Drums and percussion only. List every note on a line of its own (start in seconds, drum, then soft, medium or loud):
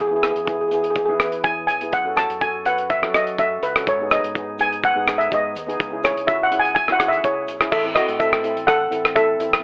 0.23 cross-stick medium
0.23 closed hi-hat medium
0.23 shaker medium
0.36 closed hi-hat medium
0.47 kick medium
0.47 closed hi-hat medium
0.47 shaker medium
0.71 closed hi-hat medium
0.71 shaker medium
0.84 closed hi-hat medium
0.95 kick loud
0.95 closed hi-hat medium
0.95 shaker medium
1.20 cross-stick medium
1.20 closed hi-hat medium
1.20 shaker medium
1.32 closed hi-hat medium
1.44 kick medium
1.44 closed hi-hat medium
1.44 shaker medium
1.68 closed hi-hat medium
1.68 shaker medium
1.81 closed hi-hat medium
1.92 kick loud
1.92 closed hi-hat medium
1.92 shaker medium
2.16 cross-stick medium
2.16 closed hi-hat medium
2.16 shaker medium
2.30 closed hi-hat medium
2.41 kick medium
2.41 closed hi-hat medium
2.41 shaker medium
2.65 closed hi-hat medium
2.65 shaker medium
2.78 closed hi-hat medium
2.90 kick loud
2.90 closed hi-hat medium
2.90 shaker medium
3.03 cross-stick medium
3.14 cross-stick medium
3.14 closed hi-hat medium
3.14 shaker medium
3.27 closed hi-hat medium
3.38 kick medium
3.38 closed hi-hat medium
3.38 shaker medium
3.63 closed hi-hat medium
3.63 shaker medium
3.76 cross-stick medium
3.76 closed hi-hat medium
3.86 kick loud
3.86 closed hi-hat medium
3.86 shaker medium
4.10 cross-stick medium
4.10 closed hi-hat medium
4.10 shaker medium
4.24 closed hi-hat medium
4.35 kick medium
4.35 closed hi-hat medium
4.35 shaker medium
4.59 closed hi-hat medium
4.59 shaker medium
4.73 closed hi-hat medium
4.83 kick loud
4.83 closed hi-hat medium
4.83 shaker medium
5.07 cross-stick medium
5.07 closed hi-hat medium
5.07 shaker medium
5.21 closed hi-hat medium
5.31 kick medium
5.31 closed hi-hat medium
5.31 shaker medium
5.56 closed hi-hat medium
5.56 shaker loud
5.70 closed hi-hat medium
5.80 kick loud
5.80 closed hi-hat medium
5.80 shaker medium
6.03 cross-stick medium
6.03 closed hi-hat medium
6.03 shaker loud
6.17 closed hi-hat medium
6.27 kick medium
6.27 closed hi-hat medium
6.27 shaker medium
6.52 closed hi-hat medium
6.65 closed hi-hat medium
6.65 shaker soft
6.76 kick loud
6.76 closed hi-hat medium
6.76 shaker medium
6.88 cross-stick medium
7.00 cross-stick medium
7.00 closed hi-hat medium
7.00 shaker medium
7.13 closed hi-hat medium
7.24 kick medium
7.24 closed hi-hat medium
7.24 shaker medium
7.48 closed hi-hat medium
7.48 shaker medium
7.60 cross-stick medium
7.60 closed hi-hat medium
7.60 shaker soft
7.72 kick loud
7.72 crash loud
7.72 shaker medium
7.95 cross-stick medium
7.95 closed hi-hat medium
7.95 shaker medium
8.09 closed hi-hat medium
8.20 kick medium
8.20 closed hi-hat medium
8.20 shaker loud
8.33 cross-stick medium
8.44 closed hi-hat medium
8.44 shaker medium
8.57 closed hi-hat medium
8.68 kick loud
8.68 cross-stick medium
8.68 closed hi-hat medium
8.68 shaker medium
8.92 closed hi-hat medium
8.92 shaker medium
9.05 cross-stick medium
9.05 closed hi-hat medium
9.16 kick medium
9.16 closed hi-hat medium
9.16 shaker medium
9.40 closed hi-hat medium
9.40 shaker medium
9.53 cross-stick medium
9.53 closed hi-hat medium